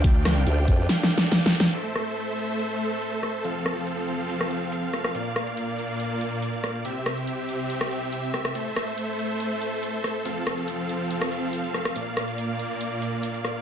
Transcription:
Already playing: D4 D5 F5 G5
0.04 D2, kick, closed hi-hat
0.25 cross-stick, snare, closed hi-hat
0.36 closed hi-hat
0.47 D2, closed hi-hat
0.68 F2, kick, closed hi-hat
0.89 snare, closed hi-hat
1.03 snare
1.10 closed hi-hat
1.18 snare
1.32 snare, closed hi-hat
1.43 snare, closed hi-hat
1.53 open hi-hat
1.60 snare
1.74 A3 A4 C5 E5, closed hi-hat, crash
1.96 cross-stick, closed hi-hat
2.07 closed hi-hat
2.17 closed hi-hat
2.38 closed hi-hat
2.59 closed hi-hat
2.81 closed hi-hat
3.02 closed hi-hat
3.13 closed hi-hat
3.23 cross-stick, closed hi-hat
3.44 F3 C4 F5, closed hi-hat
3.66 cross-stick, closed hi-hat
3.77 closed hi-hat
3.87 closed hi-hat
4.08 closed hi-hat
4.30 closed hi-hat
4.41 cross-stick
4.51 closed hi-hat
4.72 closed hi-hat
4.83 closed hi-hat
4.93 cross-stick, closed hi-hat
5.04 cross-stick
5.15 A#2 A#3 D5, closed hi-hat
5.36 cross-stick, closed hi-hat
5.47 closed hi-hat
5.57 closed hi-hat
5.79 closed hi-hat
6.00 closed hi-hat
6.21 closed hi-hat
6.42 closed hi-hat
6.53 closed hi-hat
6.64 cross-stick, closed hi-hat
6.85 C3 C4 G4 E5, closed hi-hat
7.06 cross-stick, closed hi-hat
7.17 closed hi-hat
7.27 closed hi-hat
7.49 closed hi-hat
7.70 closed hi-hat
7.81 cross-stick
7.91 closed hi-hat
8.13 closed hi-hat
8.24 closed hi-hat
8.34 cross-stick, closed hi-hat
8.45 cross-stick
8.55 A3 A4 C5, closed hi-hat
8.76 cross-stick, closed hi-hat
8.87 closed hi-hat
8.98 closed hi-hat
9.19 closed hi-hat
9.40 closed hi-hat
9.62 closed hi-hat
9.83 closed hi-hat
9.94 closed hi-hat
10.04 cross-stick, closed hi-hat
10.25 F3 C4 F5, closed hi-hat
10.47 cross-stick, closed hi-hat
10.58 closed hi-hat
10.68 closed hi-hat
10.89 closed hi-hat
11.11 closed hi-hat
11.21 cross-stick
11.32 closed hi-hat
11.53 closed hi-hat
11.64 closed hi-hat
11.74 cross-stick, closed hi-hat
11.85 cross-stick
11.96 A#2 A#3 D5, closed hi-hat
12.17 cross-stick, closed hi-hat
12.28 closed hi-hat
12.38 closed hi-hat
12.59 closed hi-hat
12.81 closed hi-hat
13.02 closed hi-hat
13.23 closed hi-hat
13.34 closed hi-hat
13.45 cross-stick, closed hi-hat

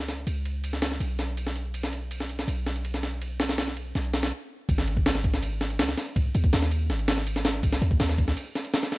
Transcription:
Already playing: C#2
0.08 snare, ride
0.27 C#2, ride
0.45 ride
0.64 ride
0.73 snare
0.82 snare, ride
0.92 snare
1.00 B1, ride
1.19 snare, ride
1.37 ride
1.47 snare
1.56 ride
1.74 ride
1.83 snare
1.93 ride
2.11 ride
2.20 snare
2.29 ride
2.39 snare
2.48 B1, ride
2.66 snare, ride
2.76 ride
2.85 ride
2.94 snare
3.03 snare, ride
3.21 ride
3.40 snare, ride
3.49 snare, ride
3.58 snare, ride
3.68 snare
3.77 ride
3.95 B1, snare, ride
4.04 ride
4.14 snare, ride
4.23 snare, ride
4.69 G#1, kick, ride
4.78 snare
4.87 ride
4.97 kick
5.06 snare, ride
5.15 snare
5.24 kick, ride
5.34 snare
5.43 ride
5.61 snare, ride
5.70 ride
5.79 C#2, snare, ride
5.89 snare
5.98 snare, ride
6.16 kick, ride
6.35 D#2, ride
6.44 kick
6.53 D#2, snare, ride
6.62 snare
6.71 ride
6.90 G#1, snare, ride
6.99 ride
7.08 snare, ride
7.18 snare
7.27 ride
7.36 snare
7.45 snare, ride
7.63 kick, ride
7.73 snare
7.82 D#2, ride
7.91 kick
8.00 D#2, snare, ride
8.09 snare
8.18 kick, ride
8.28 snare
8.37 ride
8.55 snare, ride
8.65 ride
8.74 snare, ride
8.83 snare
8.92 snare, ride

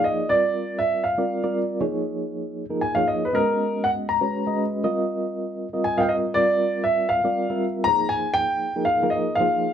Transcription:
Already playing: F3 A#3 D#4 G#4 D5
0.04 D#5
0.29 G3 C4 F4 A#4 D5
0.79 E5
1.04 F5
1.18 G3 C4 F4 A#4 D5
1.43 G3 C4 F4 A#4 D5
1.81 F3 A#3 D#4 G#4 C#5
2.70 F3 A#3 D#4 G#4 A#4
2.81 G#5
2.95 F3 A#3 D#4 G#4 C#5 F5
3.08 D#5
3.25 B4
3.33 G#3 B3 C#4 F#4 A#4 D#5
3.84 F#5
4.09 A#5
4.21 G#3 C#4 F#4 B4 C#5
4.46 G#3 C#4 F#4 B4 D#5
4.84 G3 C4 F4 A#4 D#5
5.73 G3 C4 F4 A#4 D#5
5.84 G#5
5.98 G3 C4 F4 A#4 D#5 F5 G5
6.03 F5
6.09 D#5
6.34 G3 C4 F4 A#4 D5
6.84 E5
7.09 F5
7.24 G3 C4 F4 A#4 D5
7.50 G3 C4 F4 A#4 E5
7.84 F3 A#3 D#4 G#4 C5 A#5
8.09 G#5
8.34 G5
8.76 F3 A#3 D#4 G#4 A#4
8.85 F5
9.02 F3 A#3 D#4 G#4 A#4
9.10 D#5
9.35 F5
9.40 F3 A#3 D#4 G#4 C5

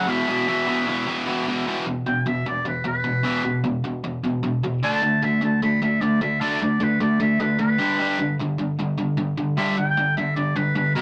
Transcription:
Already playing: F#5
0.07 E2 B2 E3 E5
0.27 E2 B2 E3
0.48 E2 B2 E3
0.67 E2 B2 E3
0.88 E2 B2 E3
1.07 E2 B2 E3
1.27 E2 B2 E3
1.47 E2 B2 E3
1.67 E2 B2 E3
1.86 E2 B2
2.06 E2 B2 G5
2.26 E2 B2 E5
2.46 E2 B2 D5
2.65 E2 B2 B4
2.84 E2 B2 B4
3.04 E2 B2
3.24 E2 B2 E3
3.44 E2 B2
3.64 E2 B2
3.84 E2 B2
4.04 E2 B2
4.24 E2 B2
4.43 E2 B2
4.64 E2 B2
4.83 D3 A3 D4 A5
5.03 D3 A3
5.23 D3 A3 E5
5.42 D3 A3 A5
5.63 D3 A3 B5
5.82 D3 A3 E5
6.01 D3 A3 D5
6.21 D3 A3 E5
6.40 D3 A3 D4 A5
6.62 D3 A3 D5
6.80 D3 A3 B4
7.00 D3 A3 D5
7.20 D3 A3 E5
7.40 D3 A3 B4
7.58 D3 A3 B4
7.78 G2 D3 G3
7.99 G2 D3 G3
8.19 G2 D3
8.39 G2 D3
8.58 G2 D3
8.79 G2 D3
8.98 G2 D3
9.17 G2 D3
9.38 G2 D3
9.57 G2 D3 G3 E5
9.78 G2 D3 G5
9.97 G2 D3
10.17 G2 D3 E5
10.36 G2 D3 D5
10.56 G2 D3 B4
10.75 G2 D3 B4
10.95 B2 F#3 B3 B4

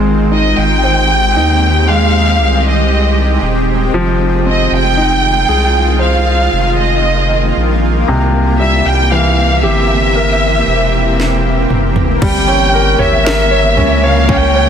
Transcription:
Already playing: G#1 D#3 G#3 C4 G4
0.31 D#4 D#5
0.58 G#1 G5
0.84 C5
1.35 D#2 D#4
1.88 G#3 F5
2.39 C2
2.69 D#5
3.41 D#1
3.92 F1 D#3 F3 F4
4.46 C4 D#5
4.71 F1
4.76 G5
4.97 D#4
5.49 C2 G#4
5.99 A#3 C5 F5
6.53 F1
6.81 D#5
7.57 A#1
8.08 C2 C3 E3 C4 G4
8.60 G3 E5
8.85 C2 G5
9.12 E3 F5
9.63 G1 G4 E5
10.15 A#4
10.67 E1
11.20 snare
11.69 F1, mid tom
11.96 floor tom
12.22 G1 C#3 G3 A#3 A#4 G5, kick, floor tom, crash
12.48 C#4
12.74 A#4
12.98 G1 C#5 E5, floor tom
13.25 A#4, snare
13.51 C#5
13.76 C#2 C#4, floor tom
14.03 C#5 F5
14.29 C#4 G5, kick
14.55 C#5

